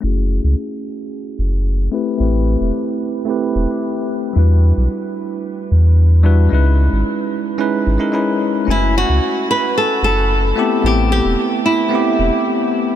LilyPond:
<<
  \new Staff \with { instrumentName = "Nylon-string guitar" } { \time 4/4 \key fis \minor \tempo 4 = 111 r1 | r1 | r1 | r1 |
e'8 fis'4 b'8 a'8 a'4. | g'8 g'4 e'4. r4 | }
  \new Staff \with { instrumentName = "Tine electric piano" } { \time 4/4 \key fis \minor <a cis' e' fis' gis'>2.~ <a cis' e' fis' gis'>8 <a c' e' g' b'>8 | <a c' e' g' b'>2 <a c' e' g' b'>2 | <g d' e' fis' b'>2.~ <g d' e' fis' b'>8 <g d' e' fis' b'>8 | <gis cis' dis' e' b'>2 <gis cis' dis' e' b'>8. <gis cis' dis' e' ais'>16 <gis cis' dis' e' b'>4 |
<a cis' e' fis' gis''>2.~ <a cis' e' fis' gis''>8 <a b c' e' g'>8 | <a b c' e' g'>2 <a b c' e' g'>2 | }
  \new Staff \with { instrumentName = "Sub bass" } { \clef bass \time 4/4 \key fis \minor fis,,8. cis,16 r4. fis,,4 r8 | a,,8. e,,16 r4. e,,16 r4 r16 | e,8. b,,16 r4. e,4. | cis,8. gis,,16 r4. gis,,16 r4 r16 |
fis,,8. cis,16 r4. fis,,4 r8 | a,,8. e,,16 r4. e,,16 r4 r16 | }
>>